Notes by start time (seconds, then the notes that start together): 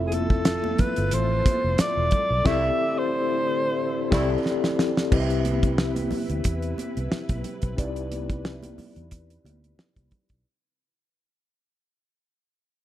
Already playing: F1 F3 A3 C4 E4 F4 A4 E5
0.07 G#4
0.12 A4, closed hi-hat, high conga
0.30 kick
0.45 snare, closed hi-hat
0.64 high conga
0.78 B4, muted fingered electric bass stroke, kick, closed hi-hat, high conga, low conga
0.96 G1, closed hi-hat
1.11 A1 C5, closed hi-hat, muted conga
1.46 kick, closed hi-hat, high conga
1.64 F1
1.78 D5, snare, closed hi-hat, muted conga
1.97 E1
2.11 kick, closed hi-hat, low conga
2.31 B1
2.45 C2 D3 G3 A3 C4 E4 G4 A4 D5 E5, kick, snare, crash
2.98 C5
4.10 C2 G3 A3 C4 E4 G4 A4 D5, kick, snare, crash
4.46 snare
4.64 snare
4.79 snare
4.97 snare
5.11 C2 C3 C4 E4 G4 B4 D#5, kick, crash
5.20 E5
5.30 closed hi-hat
5.45 closed hi-hat, muted conga, high conga
5.63 kick, closed hi-hat
5.78 snare
5.96 closed hi-hat, high conga
6.11 muted fingered electric bass stroke, open hi-hat, muted conga, high conga, low conga
6.30 D2, closed hi-hat
6.44 E2, kick, closed hi-hat
6.62 closed hi-hat
6.78 closed hi-hat, high conga
6.97 C2, closed hi-hat
7.12 muted fingered electric bass stroke, snare
7.29 B1, kick, closed hi-hat, high conga
7.44 closed hi-hat, muted conga, low conga
7.62 B1, kick, closed hi-hat
7.77 C2 C4 D#4 G4 B4 D5, kick, closed hi-hat
7.84 E4
7.96 closed hi-hat
8.12 closed hi-hat, muted conga, high conga
8.30 kick, closed hi-hat
8.45 snare
8.63 closed hi-hat, high conga
8.78 muted fingered electric bass stroke, open hi-hat, high conga, low conga
8.96 E2, closed hi-hat
9.11 kick, closed hi-hat
9.30 closed hi-hat
9.45 D2, closed hi-hat, muted conga, high conga
9.64 closed hi-hat
9.79 snare, muted conga
9.96 C2, kick, closed hi-hat, high conga
10.11 kick, closed hi-hat, muted conga, low conga
10.29 B1, kick, closed hi-hat